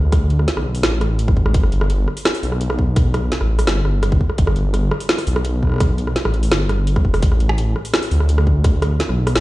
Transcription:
Already playing: D2
0.12 kick, cross-stick, closed hi-hat
0.30 closed hi-hat
0.39 cross-stick
0.48 snare, closed hi-hat
0.57 B1, cross-stick
0.75 open hi-hat
0.83 A1, cross-stick, snare, closed hi-hat
1.01 cross-stick, closed hi-hat
1.19 closed hi-hat
1.28 kick, cross-stick
1.37 G1, kick
1.46 A1, cross-stick
1.54 G1, kick, closed hi-hat
1.63 cross-stick
1.72 closed hi-hat
1.81 cross-stick
1.90 closed hi-hat
2.08 cross-stick
2.17 open hi-hat
2.25 cross-stick, snare, closed hi-hat
2.35 open hi-hat
2.43 B1, open hi-hat
2.52 cross-stick
2.61 closed hi-hat
2.70 cross-stick
2.79 kick
2.96 kick, cross-stick, closed hi-hat
3.14 cross-stick, closed hi-hat
3.32 snare, closed hi-hat
3.41 A1, cross-stick
3.59 cross-stick, open hi-hat
3.67 G1, snare, closed hi-hat
3.85 cross-stick
4.03 cross-stick, closed hi-hat
4.12 kick
4.21 kick
4.30 cross-stick
4.38 G1, kick, closed hi-hat
4.47 cross-stick
4.56 closed hi-hat
4.74 cross-stick, closed hi-hat
4.91 cross-stick
5.00 open hi-hat
5.09 snare, closed hi-hat
5.18 cross-stick, open hi-hat
5.27 B1, open hi-hat
5.36 cross-stick
5.45 closed hi-hat
5.63 kick, cross-stick
5.65 cross-stick
5.67 cross-stick
5.69 cross-stick
5.72 cross-stick
5.74 cross-stick
5.76 cross-stick
5.78 cross-stick
5.80 kick, cross-stick, closed hi-hat
5.98 closed hi-hat
6.07 cross-stick
6.16 snare, closed hi-hat
6.25 A1, cross-stick
6.34 closed hi-hat
6.43 open hi-hat
6.51 G1, cross-stick, snare, closed hi-hat
6.69 cross-stick, closed hi-hat
6.87 closed hi-hat
6.96 B1, kick, cross-stick
7.05 F1, kick
7.14 cross-stick, open hi-hat
7.22 A1, kick, closed hi-hat
7.32 cross-stick
7.40 closed hi-hat
7.49 cross-stick
7.58 closed hi-hat
7.76 cross-stick
7.85 open hi-hat
7.94 cross-stick, snare, closed hi-hat
8.03 open hi-hat
8.11 D2, open hi-hat
8.20 cross-stick
8.29 closed hi-hat
8.38 cross-stick
8.47 kick
8.64 kick, cross-stick, closed hi-hat
8.82 cross-stick, closed hi-hat
9.00 snare, closed hi-hat
9.09 B1, cross-stick
9.27 cross-stick, open hi-hat
9.36 A1, snare, closed hi-hat

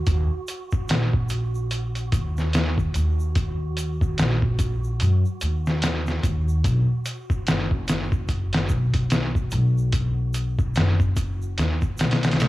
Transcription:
Already playing: F#4
0.07 D#2, kick, closed hi-hat, shaker
0.48 closed hi-hat, shaker
0.71 kick, shaker
0.89 A#1, snare, closed hi-hat, shaker
1.13 kick
1.29 closed hi-hat, shaker
1.55 shaker
1.71 closed hi-hat, shaker
1.95 closed hi-hat, shaker
2.12 D#2, kick, closed hi-hat, shaker
2.37 snare, shaker
2.53 snare, closed hi-hat, shaker
2.78 kick, shaker
2.94 D#2, closed hi-hat, shaker
3.20 shaker
3.35 kick, closed hi-hat, shaker
3.77 closed hi-hat, shaker
4.01 kick, shaker
4.18 A#1, snare, closed hi-hat, shaker
4.42 kick
4.59 kick, closed hi-hat, shaker
4.84 shaker
5.00 F#2, closed hi-hat, shaker
5.25 shaker
5.41 D#2, closed hi-hat, shaker
5.66 snare, shaker
5.82 snare, closed hi-hat, shaker
6.06 snare, shaker
6.23 D#2, kick, closed hi-hat, shaker
6.48 shaker
6.64 B1, kick, closed hi-hat, shaker
7.06 closed hi-hat, shaker
7.30 kick, shaker
7.47 F#1, snare, closed hi-hat, shaker
7.71 kick
7.88 snare, closed hi-hat, shaker
8.12 kick, shaker
8.29 kick, closed hi-hat, shaker
8.53 snare, closed hi-hat, shaker
8.69 B1, kick, shaker
8.94 kick, closed hi-hat, shaker
9.10 snare, closed hi-hat, shaker
9.35 kick, shaker
9.51 B1, closed hi-hat, shaker
9.78 shaker
9.92 kick, closed hi-hat, shaker
10.34 closed hi-hat, shaker
10.59 kick, shaker
10.75 F#1, snare, closed hi-hat, shaker
11.00 kick, shaker
11.16 kick, closed hi-hat, shaker
11.42 shaker
11.58 D#2, snare, closed hi-hat, shaker
11.82 kick, shaker
11.98 B1, snare, closed hi-hat, shaker
12.11 snare, closed hi-hat
12.23 snare, closed hi-hat, shaker
12.31 snare, closed hi-hat
12.40 snare, closed hi-hat, shaker

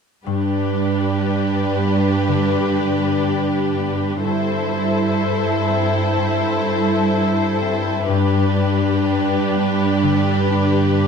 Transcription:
0.26 G2 D4 G4 B4
0.76 D4
1.26 G4
1.77 B3
2.28 D3
2.79 D4
3.28 G4
3.77 B3
4.23 G2 E4 A4 C5
4.72 E4
5.21 A4
5.69 C4
6.18 G2
6.66 E4
7.13 A4
7.61 C4
8.08 G2 D4 G4 B4
8.56 D4
9.05 G4
9.54 B3
10.03 D3
10.51 D4
10.99 G4

